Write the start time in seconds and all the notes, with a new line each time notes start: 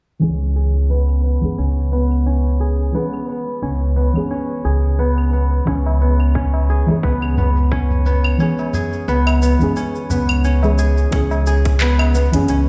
0.19 C#2 E3 G#3 C#4, cabasa
0.24 G#4
0.56 G#4, cabasa
0.90 B3
1.09 cabasa, claves
1.24 B3, cabasa
1.41 F#2 E3 G#3 C#4, cabasa
1.45 G#4
1.58 C#2 C#4, cabasa
1.77 cabasa
1.92 B3, cabasa
2.11 cabasa, claves
2.26 C#4, cabasa
2.45 cabasa
2.60 G#4, cabasa
2.79 cabasa
2.92 E3 G#3 B3 C#4, cabasa
2.96 G#4
3.13 cabasa, claves
3.28 B3, cabasa
3.47 cabasa
3.62 C#2 C#4, cabasa
3.82 cabasa
3.96 B3, cabasa
4.13 F#2 E3 G#3 C#4, cabasa, claves
4.17 G#4
4.30 C#4, cabasa
4.50 cabasa
4.65 C#2 G#4, cabasa
4.84 cabasa
4.99 B3, cabasa
5.18 cabasa, claves
5.33 B3, cabasa
5.52 cabasa
5.65 C#2 E3 G#3 C#4 G#4, kick, cabasa
5.86 tabla na, cabasa
6.01 B3, cabasa
6.20 cabasa, claves
6.35 C#4, kick, cabasa
6.54 tabla na, cabasa
6.69 G#4, cabasa
6.86 F#2 E3 G#3 C#4 G#4, tabla na, cabasa
7.03 C#2 B3, kick, cabasa
7.22 tabla tin, cabasa, claves
7.38 B3, tabla na, tabla ge, cabasa
7.57 cabasa
7.72 C#4, kick, cabasa
7.90 tabla ge, cabasa
8.06 B3, cabasa
8.24 cabasa, claves
8.38 E3 G#3 C#4 G#4, cabasa
8.59 tabla na, tabla tin, cabasa
8.73 G#4, tabla ge, cabasa
8.93 cabasa
9.08 C#2 B3, cabasa
9.27 tabla na, cabasa, claves
9.42 B3, cabasa
9.59 F#2 E3 G#3 C#4, cabasa
9.63 G#4
9.76 C#4, cabasa
9.95 cabasa
10.10 C#2 B3, tabla ge, cabasa
10.29 tabla tin, cabasa, claves
10.44 C#4, cabasa
10.62 E3 G#3 C#4 G#4, tabla na, tabla tin, cabasa
10.78 G#4, tabla tin, cabasa
10.97 cabasa
11.11 C#2 E3 G#3 C#4, kick, closed hi-hat, cabasa
11.15 G#4
11.31 tabla na, cabasa
11.47 G#4, cabasa
11.65 kick, closed hi-hat, cabasa
11.81 B3, clap, closed hi-hat, cabasa
11.99 tabla na, cabasa, claves
12.15 B3, cabasa
12.32 F#2 E3 G#3 C#4 G#4, closed hi-hat, cabasa
12.48 C#2 C#4, closed hi-hat, cabasa